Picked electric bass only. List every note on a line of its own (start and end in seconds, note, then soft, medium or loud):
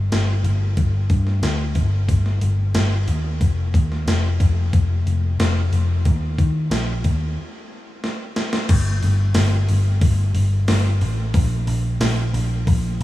0.12 0.43 G1 medium
0.44 0.75 G1 medium
0.77 1.08 G1 medium
1.10 1.41 G2 medium
1.42 1.74 D2 medium
1.75 2.07 G1 medium
2.08 2.40 G1 medium
2.42 2.73 G1 medium
2.76 3.06 G1 medium
3.08 3.39 D#2 medium
3.41 3.72 F1 medium
3.74 4.05 D#2 medium
4.06 4.38 F1 medium
4.40 4.71 F1 medium
4.73 5.04 F1 medium
5.06 5.37 F1 medium
5.39 5.70 F1 medium
5.72 6.03 F1 medium
6.05 6.37 D#2 loud
6.39 6.70 D#3 medium
6.70 7.02 A#1 medium
7.05 7.36 D#2 medium
8.69 9.01 G1 loud
9.03 9.34 G1 medium
9.36 9.67 G1 medium
9.69 10.01 G1 medium
10.01 10.33 G1 loud
10.35 10.66 G1 medium
10.68 11.00 G1 medium
11.01 11.33 A1 medium
11.34 11.66 A#1 loud
11.67 11.99 A#1 medium
12.00 12.32 A#1 medium
12.33 12.65 A#1 medium
12.67 12.98 A#1 medium